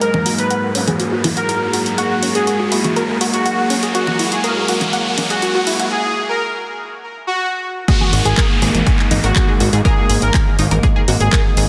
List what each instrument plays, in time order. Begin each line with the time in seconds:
Already playing: synth drone G#2, riser
0.01 analog synth pad F#3 F#4 G#4 A#4, analog polysynth F#3 G#3 A#3, synth arpeggio sound A#4, supersaw synth A#4, closed hi-hat
0.14 low conga
0.26 synth arpeggio sound F#4, open hi-hat
0.38 supersaw synth B4, closed hi-hat
0.50 synth arpeggio sound F#5, closed hi-hat
0.75 analog polysynth F#3 G#3 A#3, synth arpeggio sound C#4, open hi-hat
0.88 synth arpeggio sound G#4, closed hi-hat, low conga
1.00 synth arpeggio sound F#4, closed hi-hat
1.12 synth arpeggio sound F#4
1.24 analog polysynth F#3 G#3 A#3, synth arpeggio sound E4, open hi-hat, low conga
1.37 synth arpeggio sound F#4, supersaw synth A#4, closed hi-hat
1.49 synth arpeggio sound A#4, closed hi-hat
1.73 synth arpeggio sound F#4, open hi-hat
1.86 closed hi-hat
1.98 analog polysynth F#3 G#3 A#3, supersaw synth F#4, synth arpeggio sound F#5, closed hi-hat
2.23 synth arpeggio sound C#4, open hi-hat
2.35 synth arpeggio sound G#4, supersaw synth G#4, closed hi-hat
2.47 synth arpeggio sound F#4, closed hi-hat
2.60 synth arpeggio sound F#4
2.72 analog polysynth F#3 G#3 A#3, synth arpeggio sound E4, open hi-hat
2.84 synth arpeggio sound F#4, closed hi-hat, low conga
2.96 synth arpeggio sound A#4, closed hi-hat
3.21 analog polysynth F#3 G#3 A#3, synth arpeggio sound F#4, open hi-hat
3.34 supersaw synth F#4, closed hi-hat
3.46 synth arpeggio sound F#5, closed hi-hat
3.70 synth arpeggio sound C#4, open hi-hat
3.83 synth arpeggio sound G#4, closed hi-hat
3.95 analog polysynth F#3 G#3 A#3, supersaw synth F#4, synth arpeggio sound F#4, closed hi-hat
4.07 synth arpeggio sound F#4, low conga
4.19 synth arpeggio sound E4, open hi-hat
4.32 synth arpeggio sound F#4, supersaw synth G#4, closed hi-hat
4.44 synth arpeggio sound A#4, closed hi-hat
4.68 analog polysynth F#3 G#3 A#3, synth arpeggio sound F#4, open hi-hat
4.81 closed hi-hat, low conga
4.93 synth arpeggio sound F#5, closed hi-hat
5.18 analog polysynth F#3 G#3 A#3, synth arpeggio sound C#4, open hi-hat, low conga
5.30 supersaw synth F#4, synth arpeggio sound G#4, closed hi-hat
5.42 synth arpeggio sound F#4, closed hi-hat
5.55 synth arpeggio sound F#4
5.67 synth arpeggio sound E4, open hi-hat
5.80 synth arpeggio sound F#4, closed hi-hat
5.91 supersaw synth G#4
6.29 supersaw synth A#4
7.27 supersaw synth F#4
7.88 synth drone G#2, analog polysynth D#3 G#3 A#3, analog synth pad G#3 G#4 A#4 D#5, supersaw synth F#4, synth arpeggio sound G#4, kick, closed hi-hat, downlifter
8.01 synth arpeggio sound G#4, low conga
8.13 analog synth bass G#1, synth arpeggio sound F#4, open hi-hat
8.25 analog synth bass G#1, synth arpeggio sound G#4, supersaw synth G#4, closed hi-hat
8.37 synth arpeggio sound A#4, kick, clap, closed hi-hat
8.62 analog synth bass G#1, analog polysynth D#3 G#3 A#3, synth arpeggio sound G#4, open hi-hat
8.75 analog synth bass G#1, closed hi-hat, low conga
8.87 synth arpeggio sound G#5, kick, closed hi-hat
8.99 clap
9.11 analog synth bass G#1, analog polysynth D#3 G#3 A#3, synth arpeggio sound D#4, open hi-hat, low conga
9.24 analog synth bass G#1, supersaw synth F#4, synth arpeggio sound A#4, closed hi-hat
9.36 synth arpeggio sound G#4, kick, clap, closed hi-hat
9.48 synth arpeggio sound G#4
9.60 analog synth bass G#1, synth arpeggio sound F#4, open hi-hat
9.73 analog synth bass G#2, synth arpeggio sound G#4, closed hi-hat
9.85 analog polysynth D#3 G#3 A#3, supersaw synth G#4, synth arpeggio sound A#4, kick, closed hi-hat
10.10 analog synth bass G#1, synth arpeggio sound G#4, open hi-hat
10.22 analog synth bass G#1, supersaw synth A#4, closed hi-hat
10.34 synth arpeggio sound G#5, kick, clap, closed hi-hat
10.59 analog synth bass G#1, analog polysynth D#3 G#3 A#3, synth arpeggio sound D#4, open hi-hat
10.71 analog synth bass G#1, synth arpeggio sound A#4, closed hi-hat, low conga
10.83 synth arpeggio sound G#4, kick, closed hi-hat
10.96 synth arpeggio sound G#4
11.08 analog synth bass G#1, analog polysynth D#3 G#3 A#3, synth arpeggio sound F#4, open hi-hat
11.20 analog synth bass G#1, synth arpeggio sound G#4, supersaw synth G#4, closed hi-hat
11.33 synth arpeggio sound A#4, kick, clap, closed hi-hat
11.57 analog synth bass G#1, synth arpeggio sound G#4, open hi-hat